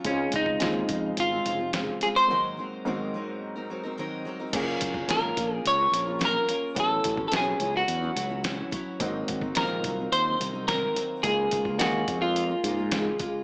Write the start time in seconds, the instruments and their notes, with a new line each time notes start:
0.04 fretless electric bass C#2, steel-string acoustic guitar C#3 G#3 C4 F4, upright piano G#3 C4 D#4 F4, clean electric guitar C#4, kick, closed hi-hat
0.32 fretless electric bass C#2, steel-string acoustic guitar C#3 G#3 C4 F4, clean electric guitar D#4, kick, closed hi-hat
0.46 kick
0.59 fretless electric bass D#2, steel-string acoustic guitar C#3 G#3 C4 F4, upright piano G#3 C4 D#4 F4, snare, closed hi-hat
0.88 fretless electric bass F2, steel-string acoustic guitar C#3 G#3 C4 F4, kick, closed hi-hat
1.17 fretless electric bass G#1, clean electric guitar F4, closed hi-hat
1.30 steel-string acoustic guitar G#3 C4 F4
1.45 fretless electric bass F1, steel-string acoustic guitar C#3 G#3 C4 F4, closed hi-hat
1.58 steel-string acoustic guitar G#3 C4 F4
1.73 steel-string acoustic guitar C#3 G#3 C4 F4, snare, closed hi-hat
2.01 steel-string acoustic guitar C#3 G#3 C4 F4, clean electric guitar G#4, closed hi-hat
2.16 steel-string acoustic guitar G#3 C4, clean electric guitar C5
2.28 upright piano G#2 A#3 C4 D#4 F#4, steel-string acoustic guitar G#2 D#3 F#3 C4 D#4
2.32 steel-string acoustic guitar A#4
2.57 steel-string acoustic guitar F#3 C4 D#4 A#4
2.85 upright piano G#2 A#3 C4 D#4 F#4, steel-string acoustic guitar G#2 D#3 F#3 C4 D#4 A#4
3.14 steel-string acoustic guitar F#3 C4 D#4 A#4
3.56 steel-string acoustic guitar F#3 C4 D#4 A#4
3.70 steel-string acoustic guitar F#3 C4 D#4 A#4
3.83 steel-string acoustic guitar F#3 C4 D#4 A#4
3.98 steel-string acoustic guitar G#2 D#3 F#3 C4 D#4 A#4
4.25 steel-string acoustic guitar F#3 C4 D#4 A#4
4.39 steel-string acoustic guitar F#3 C4 D#4 A#4
4.53 fretless electric bass F#1, steel-string acoustic guitar F#3 A#3 C#4 F4 A#4, upright piano A#3 C#4 F4 G#4, kick, closed hi-hat, crash
4.81 fretless electric bass F#1, kick, closed hi-hat
4.94 steel-string acoustic guitar C#4 F4 A#4, kick
5.08 fretless electric bass G#1, steel-string acoustic guitar F#3 A#3 C#4 F4 A#4, upright piano A#3 C#4 F4 A#4, clean electric guitar A#4, snare, closed hi-hat
5.36 fretless electric bass A#1, steel-string acoustic guitar A#3 C#4 F4 A#4, kick, closed hi-hat
5.55 clean electric guitar G#4
5.65 fretless electric bass C#2, clean electric guitar C#5, closed hi-hat
5.78 steel-string acoustic guitar C#4 F4 A#4
5.91 fretless electric bass A#1, steel-string acoustic guitar A#3 C#4 F4 A#4, closed hi-hat
6.05 steel-string acoustic guitar C#4 F4 A#4
6.19 steel-string acoustic guitar F#3 A#3 C#4 F4 A#4, snare, closed hi-hat
6.25 clean electric guitar A#4
6.48 steel-string acoustic guitar A#3 C#4 F4 A#4, closed hi-hat
6.75 fretless electric bass A1, steel-string acoustic guitar A2 F#3 C#4 E4, upright piano B3 C#4 E4 F#4, kick, closed hi-hat
6.80 clean electric guitar A4
7.04 fretless electric bass A1, kick, closed hi-hat
7.17 steel-string acoustic guitar F#3 C#4 E4, kick
7.28 fretless electric bass B1, steel-string acoustic guitar A2 F#3, upright piano B3, clean electric guitar A4, closed hi-hat
7.32 steel-string acoustic guitar C#4 E4, upright piano C#4 E4 F#4, snare
7.37 clean electric guitar G#4
7.60 fretless electric bass C#2, steel-string acoustic guitar A2 F#3 C#4 E4, closed hi-hat
7.74 steel-string acoustic guitar F#3 C#4 E4, clean electric guitar F#4
7.88 fretless electric bass E2, closed hi-hat
8.02 steel-string acoustic guitar F#3 C#4 E4
8.16 fretless electric bass C#2, steel-string acoustic guitar A2 F#3 C#4 E4, closed hi-hat
8.29 steel-string acoustic guitar F#3 C#4 E4
8.44 steel-string acoustic guitar A2 F#3 C#4 E4, snare, closed hi-hat
8.71 steel-string acoustic guitar A2 F#3 C#4 E4, kick, closed hi-hat
9.00 fretless electric bass G#1, steel-string acoustic guitar G#2 D#3 F#3 C4 D#4, upright piano A#3 C4 D#4 F#4, kick, closed hi-hat
9.28 fretless electric bass G#1, kick, closed hi-hat
9.41 steel-string acoustic guitar F#3 C4 D#4, kick
9.55 fretless electric bass A#1, steel-string acoustic guitar G#2 D#3 F#3 C4 D#4, upright piano A#3 C4 D#4, clean electric guitar A#4, snare, closed hi-hat
9.60 upright piano F4
9.84 fretless electric bass C2, steel-string acoustic guitar D#3 F#3 C4 D#4, kick, closed hi-hat
9.98 steel-string acoustic guitar F#3 C4 D#4
10.12 fretless electric bass D#2, clean electric guitar C5, closed hi-hat
10.26 steel-string acoustic guitar F#3 C4 D#4
10.39 fretless electric bass C2, steel-string acoustic guitar D#3 F#3 C4 D#4, closed hi-hat
10.53 steel-string acoustic guitar F#3 C4 D#4
10.68 steel-string acoustic guitar G#2 D#3 F#3 C4 D#4, clean electric guitar A#4, snare, closed hi-hat
10.95 steel-string acoustic guitar D#3 F#3 C4 D#4, closed hi-hat
11.23 fretless electric bass C#2, steel-string acoustic guitar C#3 G#3 A#3 F4, upright piano A#3 D#4 F4, clean electric guitar G#4, kick, closed hi-hat
11.27 upright piano G#4
11.51 fretless electric bass C#2, kick, closed hi-hat
11.65 steel-string acoustic guitar G#3 A#3 F4, kick
11.78 fretless electric bass D#2, steel-string acoustic guitar C#3 G#3 A#3 F4, upright piano A#3 D#4 G#4 F5, clean electric guitar F#4, snare, closed hi-hat
12.07 fretless electric bass F2, steel-string acoustic guitar C#3 G#3 A#3 F4, kick, closed hi-hat
12.21 steel-string acoustic guitar G#3 A#3 F4, clean electric guitar F4
12.36 closed hi-hat
12.49 steel-string acoustic guitar G#3 A#3 F4
12.63 fretless electric bass G#2, steel-string acoustic guitar C#3 G#3 A#3 F4, closed hi-hat
12.77 steel-string acoustic guitar G#3 A#3 F4
12.91 steel-string acoustic guitar C#3 G#3 A#3 F4, snare, closed hi-hat
13.18 steel-string acoustic guitar C#3 G#3 A#3 F4, kick, closed hi-hat